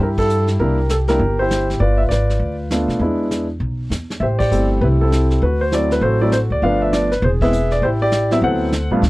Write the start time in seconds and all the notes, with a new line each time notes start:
0.00 G2 E4 G4 A#4, brush sweep
0.17 E4 A4, kick, ride
0.29 hi-hat pedal
0.47 snare
0.59 C2 G3 A#3 D4 E4 G4 A#4, brush sweep
0.89 A4, snare, hi-hat pedal
1.08 G3 A#3 D4 E4 G4 A#4, snare
1.19 G1, brush sweep
1.39 E4 G4 C5
1.51 snare, hi-hat pedal
1.70 snare
1.80 G1 F4 B4 D5, brush sweep
1.98 E5
2.09 G#1 F4 B4 D5, snare, hi-hat pedal
2.30 snare
2.39 D2, brush sweep
2.71 A3 B3 D4 F4, snare, hi-hat pedal
2.88 B2, snare
2.99 E2 G#3 B3 D4 E4, brush sweep
3.31 snare, hi-hat pedal
3.60 B1, brush sweep
3.90 E2, snare, hi-hat pedal
4.10 snare
4.20 A1 G4 C5 E5, brush sweep
4.39 G4 D5, kick, ride
4.51 G1 G3 A3 C4 E4, hi-hat pedal
4.81 C2 E4 G4 B4, brush sweep
5.01 C4 E4 A4
5.12 snare, hi-hat pedal
5.31 snare
5.41 D2 F#4 B4, brush sweep
5.61 C5
5.72 F#3 A3 C4 E4 D5, snare, hi-hat pedal
5.91 B4, snare
6.01 A1 F#4 A4 C5, brush sweep
6.21 F#3 A3 C4 E4 D5
6.32 C5, snare, hi-hat pedal
6.50 D2 D5
6.62 G1 F3 A3 B3 D4 B4 D5 F5, brush sweep
6.82 E5
6.93 D5, snare, hi-hat pedal
7.12 B4, snare
7.22 E1 G#4 C5, brush sweep
7.41 G#3 B3 C4 E4 G#4 B4 E5, kick, ride
7.53 hi-hat pedal
7.71 D5, snare
7.82 A1 E4 G4 C5, brush sweep
8.02 G4 D5
8.12 snare, hi-hat pedal
8.31 F#3 B3 C4 E4 E5, snare
8.42 D2 A4 C5 F#5, brush sweep
8.72 snare, hi-hat pedal
8.90 A1 G2 A3 B3 D4 F4
9.02 D2, brush sweep, snare